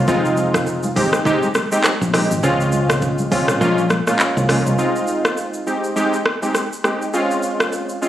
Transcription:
0.08 F1 G#3 C4 D#4 F4, kick, low conga, shaker
0.25 shaker
0.37 high conga, shaker
0.54 kick, cross-stick, shaker
0.67 shaker
0.83 high conga, shaker
0.96 G#1 G#3 C4 D#4 G4, kick, open hi-hat, high conga, low conga, shaker
1.13 cross-stick, shaker
1.25 G#3 C4 D#4 G4, kick, low conga, shaker
1.43 high conga, shaker
1.55 cross-stick, high conga, shaker
1.72 G#3 C4 D#4 G4, shaker
1.84 cross-stick, clap, high conga, shaker
2.01 A#1, shaker
2.13 G#3 C4 D#4 G4, cross-stick, open hi-hat, high conga, low conga, shaker
2.31 G#1, shaker
2.43 C#2 G#3 C4 C#4 F4, low conga, shaker
2.60 shaker
2.72 high conga, shaker
2.90 cross-stick, mid tom, shaker
3.02 kick, shaker
3.18 high conga, shaker
3.31 G#3 C4 C#4 F4, kick, open hi-hat, high conga, low conga, shaker
3.48 cross-stick, mid tom, shaker
3.61 A#1 G#3 A#3 C#4 F4, low conga, shaker
3.78 high conga, shaker
3.90 cross-stick, high conga, shaker
4.07 G#3 A#3 C#4 F4, cross-stick, shaker
4.19 clap, shaker
4.37 C2, shaker
4.49 G#3 A#3 C#4 F4, cross-stick, open hi-hat, high conga, low conga, shaker
4.66 C2, shaker
4.78 G#3 C4 D#4 F4, shaker
4.96 shaker
5.07 shaker
5.25 cross-stick, shaker
5.37 shaker
5.54 shaker
5.66 G#3 C4 D#4 G4, shaker
5.84 shaker
5.96 G#3 C4 D#4 G4, shaker
6.13 shaker
6.26 cross-stick
6.42 G#3 C4 D#4 G4, shaker
6.55 cross-stick, shaker
6.73 shaker
6.84 G#3 C4 D#4 G4, cross-stick, shaker
7.02 shaker
7.13 G#3 C4 C#4 F4, shaker
7.31 shaker
7.43 shaker
7.60 cross-stick, shaker
7.72 shaker
7.89 shaker
8.02 G#3 C4 C#4 F4, shaker

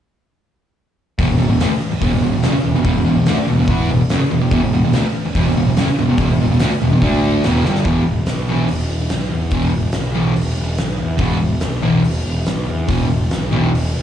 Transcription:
1.19 E1 E2 B2, kick, open hi-hat
1.29 E1 E2 B2
1.39 E1 E2 B2
1.49 E1 E2 B2
1.60 D2 D3 A3, snare, open hi-hat
1.70 muted distorted electric guitar stroke, muted picked electric bass stroke
1.91 muted distorted electric guitar stroke, muted picked electric bass stroke
2.01 E1 E2 B2, kick, open hi-hat
2.12 E1 E2 B2
2.22 E1 E2 B2
2.33 E1 E2 B2
2.43 F#1 F#2 C#3, snare, open hi-hat
2.53 muted distorted electric guitar stroke, muted picked electric bass stroke
2.64 E1 E2 B2
2.75 E1 E2 B2
2.84 E1 E2 B2, kick, open hi-hat
2.94 E1 E2 B2
3.05 E1 E2 B2
3.16 E1 E2 B2
3.26 D2 D3 A3, snare, open hi-hat
3.37 muted distorted electric guitar stroke, muted picked electric bass stroke
3.48 E1 E2 B2
3.57 E1 E2 B2
3.67 E2 E3 B3 E4, kick, open hi-hat
3.89 E1 E2 B2
4.01 muted distorted electric guitar stroke, muted picked electric bass stroke
4.09 F#1 F#2 C#3, snare, open hi-hat
4.21 muted distorted electric guitar stroke, muted picked electric bass stroke
4.31 E1 E2 B2
4.42 E1 E2 B2
4.51 E1 E2 B2, kick, open hi-hat
4.62 E1 E2 B2
4.73 E1 E2 B2
4.84 E1 E2 B2
4.93 D2 D3 A3, snare, open hi-hat
5.04 muted distorted electric guitar stroke, muted picked electric bass stroke
5.25 muted distorted electric guitar stroke, muted picked electric bass stroke
5.35 E1 E2 B2, kick, open hi-hat
5.46 E1 E2 B2
5.57 E1 E2 B2
5.66 E1 E2 B2
5.76 F#1 F#2 C#3, snare, open hi-hat
5.87 muted distorted electric guitar stroke, muted picked electric bass stroke
5.98 E1 E2 B2
6.08 E1 E2 B2
6.18 E1 E2 B2, kick, open hi-hat
6.29 E1 E2 B2
6.40 E1 E2 B2
6.50 E1 E2 B2
6.59 D2 D3 A3, snare, open hi-hat
6.70 muted distorted electric guitar stroke, muted picked electric bass stroke
6.81 E1 E2 B2
6.92 E1 E2 B2
7.02 D2 D3 A3 D4, kick, open hi-hat
7.43 E1 E2 B2 E3, snare, open hi-hat
7.63 G1 G2 D3 G3, snare
7.76 snare
7.84 E1 E2 B2 E3, kick, open hi-hat
8.07 E1
8.26 B1, snare, open hi-hat
8.48 E2 B2 E3
8.68 E1, open hi-hat
8.91 E1
9.09 B1, snare, open hi-hat
9.32 E2
9.51 E1 E2 B2 E3, kick, open hi-hat
9.74 E1
9.92 B1, snare, open hi-hat
10.14 E2 B2 E3
10.36 E1, open hi-hat
10.58 E1
10.78 B1, snare, open hi-hat
11.00 E2
11.18 E1 E2 B2 E3, kick, open hi-hat
11.42 E1
11.60 B1, snare, open hi-hat
11.82 E2 B2 E3
12.04 E1, open hi-hat
12.26 E1
12.46 B1, snare, open hi-hat
12.68 E2
12.88 E1 E2 B2 E3, kick, open hi-hat
13.10 E1
13.30 B1, snare, open hi-hat
13.51 E2 B2 E3
13.74 E1, open hi-hat
13.95 E1

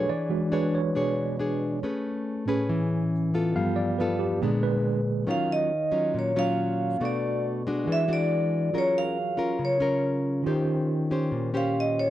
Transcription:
Already playing: B2 A3 D4 G#4 A4 B4 C#5
0.09 E3 D5
0.29 E3 G#3 D4 F#4
0.52 D4 G#4 B4 C#5
0.75 C#5
0.95 B2 D4 G#4 C#5
1.39 D4 G#4 C#5
1.83 A3 C#4 G#4 B4
2.46 A2 C#4 G#4 B4
2.69 E3
3.34 B3 F4 A4
3.55 G2 F3 G3 B3 F5
3.76 D5
3.98 B3 F4 A4 B4
4.19 G4
4.41 A#2 D3 G#3 B3 D4 G#4
4.63 B4
5.24 D#3 F#3 C#4 F4 A#4
5.29 C#5 F5
5.52 D#5
5.91 F#3 C#4 F4
6.14 A#2
6.19 C#5
6.36 F#3 C#4 F4 F5
6.98 B2 A3 B3 D4 F#4 A4
7.02 D5 C#6
7.67 G#3 D4 F#4
7.85 E3 F#4 G#4
7.89 B4 D5 E5
8.08 G#3 D4 F#4
8.13 D5
8.72 F#3 C#4 F4 G#4 A#4
8.77 A#4 C#5
8.98 F5
9.37 C#4 F4 A#4
9.59 C#3
9.65 C#5
9.80 C#4 F4 A#4
10.42 D#3 C#4 F4 G4
10.47 G4 A#4 C5
11.11 C#4 G4 C5
11.32 A#2
11.54 C#4 G4 C5 F5
11.80 D#5
11.99 C#5

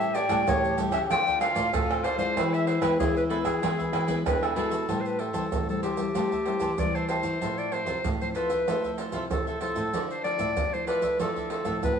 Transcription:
Already playing: A2 G3 C#4 E4 G4 A4 C#5 E5 G5
0.01 pandeiro, maracas
0.14 G4 A4 C#5 D5 G5, pandeiro, maracas
0.29 A2 G3 C#4 E4 G4 A4 C#5 G5, pandeiro, tamborim, maracas, surdo
0.47 A2 E3 C#5, pandeiro, maracas, surdo
0.64 pandeiro, maracas
0.77 G3 C#4 E4 G4 A4 C#5 G5, pandeiro, maracas, surdo
0.92 C#3 A4 C#5 E5 G5, pandeiro, tamborim, maracas, surdo
1.10 D3 A3 C4 F4 A4 C5 D5 G5, pandeiro, tamborim, maracas, surdo
1.27 A4 C5 D5, pandeiro, maracas, surdo
1.40 A3 C4 F4 A4 C5 D5 F5, pandeiro, tamborim, maracas
1.55 A2 F4 A4 C5 D5, pandeiro, maracas, surdo
1.73 A2 A4, pandeiro, tamborim, maracas, surdo
1.89 A3 C4 F4 A4 C5 D5, pandeiro, tamborim, maracas
2.03 F4 A4 C5 D5, pandeiro
2.17 D3 G#3 E4 A4 C5 D5, pandeiro, maracas
2.36 E3 E4 G#4 B4 E5, pandeiro, tamborim, maracas, surdo
2.54 E5, pandeiro, maracas
2.66 E4 G#4 B4 C5 E5, pandeiro
2.81 E3 G#3 B3 E4 G#4 B4 E5, pandeiro, tamborim, maracas, surdo
2.99 B2 E3 E4 G#4, pandeiro, maracas, surdo
3.17 B4, pandeiro, maracas
3.29 G#3 B3 E4 G#4 A4 B4 E5, pandeiro
3.44 E3 G#4 B4 E5, pandeiro, tamborim, maracas, surdo
3.62 E3 G#3 B3 E4 G#4 B4 E5, pandeiro, tamborim, maracas, surdo
3.78 G#4 B4 E5, pandeiro, maracas, surdo
3.92 E3 E4 G#4 B4 E5, pandeiro, tamborim
4.07 G#3 B3 E4 G#4 B4 E5, pandeiro, maracas, surdo
4.26 B2 D3 D4 B4, pandeiro, tamborim, maracas, surdo
4.42 G#4 A4 B4 E5, pandeiro, tamborim, maracas
4.56 B2 G#3 B3 E4 G#4 A4 B4 E5, pandeiro
4.70 G#4 B4 E5, pandeiro, maracas
4.89 A2 G3 C4 E4 G4 C5 E5 A5, pandeiro, maracas, surdo
5.01 C5
5.05 B4, pandeiro, maracas
5.18 G4 A4 C5 E5 A5, pandeiro
5.33 E3 G3 C4 E4 G4 C5 E5 A5, pandeiro, maracas, surdo
5.52 A2 E3, pandeiro, maracas, surdo
5.69 G3 C4 E4 A4, pandeiro, maracas
5.82 G4 C5 E5 A5, pandeiro, maracas
5.97 G3 C4 E4 C5 E5 A5, pandeiro, maracas, surdo
6.15 A2 G3 A3 C4 E4 G4 C5 E5 A5, pandeiro, maracas, surdo
6.32 C5 E5 A5, pandeiro, maracas, surdo
6.45 G3 C4 E4 G4 C5 E5 A5, pandeiro
6.60 E3 G4 C5 E5 A5, pandeiro, maracas, surdo
6.78 E3 G3 C4 E4 D5, pandeiro, maracas, surdo
6.95 C5 E5 A5, pandeiro, maracas
7.08 G4 C5 E5 A5, pandeiro, maracas
7.23 E3 C5 E5 A5, pandeiro, maracas
7.41 A2 F3 C4 E4 F4 A4 C5 E5, pandeiro, maracas, surdo
7.58 D5, pandeiro, maracas
7.71 F3 C4 E4 F4 A4 C5 E5, pandeiro
7.86 C3 F4 A4 C5 E5, pandeiro, maracas, surdo
8.04 A2, pandeiro, maracas, surdo
8.21 F3 C4 E4 C5, pandeiro, maracas
8.35 F4 A4 B4 C5 E5, pandeiro, maracas
8.49 A4 C5 E5, pandeiro, maracas, surdo
8.68 A2 F3 A3 C4 E4 F4 A4 C5 E5, pandeiro, maracas, surdo
8.84 A4 C5 E5, pandeiro, maracas, surdo
8.98 F4 A4 C5 E5, pandeiro, maracas
9.12 C3 F3 C4 E4 F4 A4 C5 E5, pandeiro, maracas, surdo
9.30 A2 C3 A4, pandeiro, maracas, surdo
9.47 A4 C5 E5, pandeiro, maracas
9.61 F3 C4 E4 F4 A4 C5 E5, pandeiro, maracas
9.76 A2 A4 C5 E5, pandeiro, maracas
9.93 D3 F3 A3 E4 F4 A4 D5 E5, pandeiro, maracas, surdo
10.10 C5, pandeiro, maracas
10.23 F3 A3 E4 F4 A4 D5 E5, pandeiro
10.39 A2 F4 A4 D5 E5, pandeiro, maracas, surdo
10.57 A2 D3, pandeiro, maracas, surdo
10.73 F3 A3 E4 C5, pandeiro, maracas
10.87 F4 A4 B4 D5 E5, pandeiro, maracas, surdo
11.02 A4 D5 E5, pandeiro, maracas, surdo
11.20 D3 F3 A3 E4 F4 A4 D5 E5, pandeiro, maracas, surdo
11.36 A4 D5 E5, pandeiro, maracas, surdo
11.50 F4 A4 D5 E5, pandeiro
11.65 A2 F3 A3 E4 F4 A4 D5 E5, pandeiro, maracas, surdo
11.83 A2 B4, pandeiro, maracas, surdo

